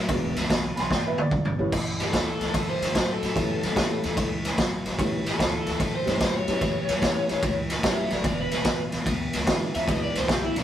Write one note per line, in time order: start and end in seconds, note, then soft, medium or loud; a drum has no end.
0.00 0.21 E6 loud
0.08 0.30 E1 loud
0.08 0.47 E2 medium
0.08 0.47 B2 loud
0.08 0.71 F#3 medium
0.08 0.71 G#3 medium
0.08 0.71 B3 medium
0.08 0.72 D4 medium
0.08 kick medium
0.08 snare soft
0.08 ride medium
0.36 0.46 C#2 medium
0.36 snare soft
0.36 ride medium
0.49 0.70 B1 medium
0.49 0.74 E2 medium
0.49 0.74 B2 medium
0.49 kick medium
0.49 snare loud
0.49 ride medium
0.76 0.87 B1 loud
0.76 0.88 E2 medium
0.76 0.89 B2 medium
0.76 0.91 G#5 medium
0.76 0.79 B5 medium
0.76 snare soft
0.76 ride medium
0.80 0.92 C6 loud
0.89 1.21 G#1 medium
0.89 1.28 E2 medium
0.89 1.28 B2 medium
0.89 kick medium
0.89 snare medium
0.94 1.05 D5 medium
0.94 1.06 G5 medium
1.06 1.18 B4 medium
1.06 1.19 E5 loud
1.18 1.72 D5 loud
1.18 high tom medium
1.31 1.52 E1 loud
1.31 1.56 E2 medium
1.31 1.56 C#3 loud
1.31 kick medium
1.31 mid tom medium
1.45 mid tom loud
1.58 1.69 G#1 loud
1.58 1.70 E2 medium
1.58 1.71 A2 medium
1.58 1.71 C#3 medium
1.58 1.71 E3 medium
1.58 1.71 G3 medium
1.58 1.71 B3 medium
1.58 1.71 C#4 medium
1.72 1.93 A1 loud
1.72 2.10 A2 medium
1.72 2.11 E3 medium
1.72 kick medium
1.72 snare soft
1.72 crash loud
2.00 2.10 A1 medium
2.00 2.53 A4 medium
2.00 snare soft
2.00 ride medium
2.13 2.34 D2 medium
2.13 2.38 A2 medium
2.13 2.38 E3 medium
2.13 kick medium
2.13 snare loud
2.13 ride medium
2.40 2.51 D2 medium
2.40 2.53 A2 medium
2.40 2.53 E3 medium
2.40 snare soft
2.40 ride medium
2.54 2.75 F#2 medium
2.54 2.92 A2 medium
2.54 2.93 E3 medium
2.54 2.68 A4 medium
2.54 kick medium
2.54 snare soft
2.54 ride medium
2.70 2.95 C5 medium
2.81 2.91 F#2 loud
2.81 snare soft
2.81 ride medium
2.95 3.19 A2 medium
2.95 3.16 A2 medium
2.95 3.20 F#3 loud
2.95 3.11 C5 medium
2.95 kick medium
2.95 snare loud
2.95 ride medium
3.11 4.29 A4 loud
3.23 3.34 A2 medium
3.23 3.33 A2 medium
3.23 3.35 F#3 medium
3.23 snare soft
3.23 ride medium
3.35 3.56 F#2 medium
3.35 3.74 A2 medium
3.35 3.74 E3 medium
3.35 3.60 G3 medium
3.35 3.60 A3 medium
3.35 3.60 B3 medium
3.35 3.60 C#4 medium
3.35 3.60 E4 medium
3.35 kick medium
3.35 snare soft
3.35 ride medium
3.63 3.73 F#2 medium
3.63 snare soft
3.63 ride medium
3.76 3.97 E2 medium
3.76 4.01 A2 medium
3.76 4.01 E3 medium
3.76 4.00 G3 medium
3.76 4.01 A3 medium
3.76 4.01 B3 medium
3.76 4.01 C#4 medium
3.76 4.01 E4 medium
3.76 kick medium
3.76 snare loud
3.76 ride medium
4.03 4.14 E2 medium
4.03 4.16 A2 medium
4.03 4.16 E3 medium
4.03 snare soft
4.03 ride medium
4.17 4.48 C#2 medium
4.17 4.55 A2 medium
4.17 4.56 E3 medium
4.17 kick medium
4.17 snare soft
4.17 ride medium
4.45 snare soft
4.45 ride medium
4.58 4.79 A1 medium
4.58 4.82 A2 medium
4.58 4.83 F#3 loud
4.58 kick medium
4.58 snare loud
4.58 ride medium
4.85 4.96 A1 medium
4.85 4.97 A2 medium
4.85 4.98 F#3 medium
4.85 snare soft
4.85 ride medium
4.98 5.19 A1 medium
4.98 5.37 A2 medium
4.98 5.37 E3 medium
4.98 5.23 G3 medium
4.98 5.23 A3 medium
4.98 5.23 B3 medium
4.98 5.24 C#4 medium
4.98 5.24 E4 medium
4.98 kick medium
4.98 snare soft
4.98 ride medium
5.26 5.36 A1 medium
5.26 5.80 A4 loud
5.26 snare soft
5.26 ride medium
5.39 5.60 D2 medium
5.39 5.64 A2 medium
5.39 5.64 E3 loud
5.39 kick medium
5.39 snare loud
5.39 ride medium
5.66 5.77 D2 medium
5.66 5.79 A2 medium
5.66 5.79 E3 medium
5.66 snare soft
5.66 ride medium
5.80 6.01 F#2 medium
5.80 6.19 A2 medium
5.80 6.19 E3 medium
5.80 5.95 A4 medium
5.80 kick medium
5.80 snare soft
5.80 ride medium
5.96 6.22 C5 medium
6.06 6.17 F#2 loud
6.06 6.45 G3 medium
6.06 6.45 A3 medium
6.06 6.45 B3 medium
6.06 6.45 C#4 medium
6.06 6.45 E4 medium
6.06 snare soft
6.06 ride medium
6.20 6.45 A2 medium
6.20 6.41 A2 medium
6.20 6.46 F#3 medium
6.20 6.35 C5 medium
6.20 kick medium
6.20 snare loud
6.20 ride medium
6.36 7.54 C#5 loud
6.47 6.58 A2 medium
6.47 6.60 A2 medium
6.47 6.61 F#3 medium
6.47 7.00 G3 medium
6.47 7.00 A3 medium
6.47 7.00 B3 medium
6.47 7.00 C#4 medium
6.47 7.00 E4 medium
6.47 snare soft
6.47 ride medium
6.61 6.82 F#2 medium
6.61 7.00 A2 medium
6.61 7.00 E3 medium
6.61 kick medium
6.61 snare soft
6.61 ride medium
6.88 6.99 F#2 medium
6.88 snare soft
6.88 ride medium
7.01 7.23 E2 medium
7.01 7.27 A2 medium
7.01 7.27 E3 loud
7.01 7.65 G3 medium
7.01 7.65 A3 medium
7.01 7.65 B3 medium
7.01 7.65 C#4 medium
7.01 7.65 E4 medium
7.01 kick medium
7.01 snare loud
7.01 ride medium
7.29 7.40 E2 medium
7.29 7.42 A2 medium
7.29 7.42 E3 medium
7.29 snare soft
7.29 ride medium
7.42 7.74 C#2 medium
7.42 7.81 A2 medium
7.42 7.82 E3 loud
7.42 kick medium
7.42 snare soft
7.42 ride medium
7.70 snare soft
7.70 ride medium
7.83 8.04 A1 medium
7.83 8.08 A2 medium
7.83 8.08 F#3 loud
7.83 8.09 G3 medium
7.83 8.09 A3 medium
7.83 8.09 B3 medium
7.83 8.09 C#4 medium
7.83 8.09 E4 medium
7.83 7.98 G4 medium
7.83 7.98 E5 medium
7.83 kick medium
7.83 snare loud
7.83 ride medium
7.99 8.11 G4 medium
7.99 8.13 E5 medium
8.10 8.22 A1 medium
8.10 8.23 A2 medium
8.10 8.23 F#3 medium
8.10 8.25 A4 medium
8.10 8.25 D5 medium
8.10 snare soft
8.10 ride medium
8.24 8.45 E1 loud
8.24 8.63 E2 medium
8.24 8.63 B2 medium
8.24 8.38 B4 medium
8.24 8.41 D5 medium
8.24 kick medium
8.24 snare soft
8.24 ride medium
8.41 8.79 B4 medium
8.51 8.63 E1 medium
8.51 snare soft
8.51 ride medium
8.64 8.86 A1 medium
8.64 8.90 E2 medium
8.64 8.90 B2 medium
8.64 kick medium
8.64 snare loud
8.64 ride medium
8.92 9.03 A1 medium
8.92 9.04 E2 medium
8.92 9.05 B2 medium
8.92 snare soft
8.92 ride medium
9.06 9.27 C#2 medium
9.06 9.44 E2 medium
9.06 9.44 B2 medium
9.06 kick medium
9.06 snare soft
9.06 ride medium
9.33 9.44 C#2 loud
9.33 snare soft
9.33 ride medium
9.46 9.71 E2 medium
9.46 9.68 E2 loud
9.46 9.72 C#3 loud
9.46 9.71 F#3 medium
9.46 9.71 G#3 medium
9.46 9.71 B3 medium
9.46 9.71 D4 medium
9.46 9.72 E4 medium
9.46 kick medium
9.46 snare loud
9.46 ride loud
9.74 9.86 E2 medium
9.74 9.85 E2 medium
9.74 9.87 C#3 medium
9.74 9.88 E5 medium
9.74 snare soft
9.74 ride medium
9.87 10.08 C#2 medium
9.87 10.25 E2 medium
9.87 10.26 B2 loud
9.87 10.50 F#3 medium
9.87 10.50 G#3 medium
9.87 10.50 B3 medium
9.87 10.50 D4 medium
9.87 10.50 E4 medium
9.87 10.02 D#5 loud
9.87 kick medium
9.87 snare soft
9.87 ride loud
10.03 10.17 D5 medium
10.15 10.25 C#2 medium
10.15 10.29 C5 medium
10.15 snare soft
10.15 ride medium
10.28 10.49 B1 medium
10.28 10.53 E2 medium
10.28 10.53 B2 medium
10.28 10.43 G4 medium
10.28 kick medium
10.28 snare loud
10.28 ride medium
10.43 10.56 E4 medium
10.55 10.63 B1 loud
10.55 10.63 E2 medium
10.55 10.63 B2 medium
10.55 10.63 D4 medium
10.55 snare soft
10.55 ride medium